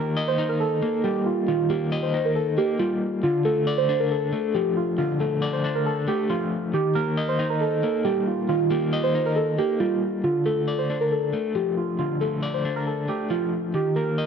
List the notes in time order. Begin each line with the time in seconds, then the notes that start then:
Already playing: D#3 A#3 A#4
0.17 D#5
0.28 C5
0.38 D#4
0.49 A#4
0.60 A4
0.82 A#3
1.04 G3 G4
1.26 F4
1.48 D#3 F4
1.70 A#3 G4
1.92 D#5
2.03 C5
2.14 D#4
2.25 A#4
2.35 A4
2.57 A#3 G4
2.79 G3 F4
3.23 D3 F4
3.45 A3 A4
3.67 D5
3.78 C5
3.89 D4
4.00 A#4
4.11 A4
4.33 A3
4.54 F3 G4
4.77 F4
4.98 D3 F4
5.20 A3 A4
5.42 D5
5.53 C5
5.64 D4
5.75 A#4
5.86 A4
6.08 A3 G4
6.30 F3 F4
6.73 D#3 G4
6.95 A#3 A#4
7.17 D#5
7.29 C5
7.39 D#4
7.50 A#4
7.61 A4
7.83 A#3
8.04 G3 G4
8.27 F4
8.49 D#3 F4
8.71 A#3 G4
8.93 D#5
9.03 C5
9.15 D#4
9.26 A#4
9.36 A4
9.58 A#3 G4
9.80 G3 F4
10.24 D3 F4
10.46 A3 A4
10.68 D5
10.78 C5
10.90 D4
11.01 A#4
11.12 A4
11.33 A3
11.55 F3 G4
11.77 F4
11.99 D3 F4
12.21 A3 A4
12.43 D5
12.54 C5
12.65 D4
12.76 A#4
12.87 A4
13.08 A3 G4
13.30 F3 F4
13.74 D#3 G4
13.96 A#3 A#4
14.18 D#5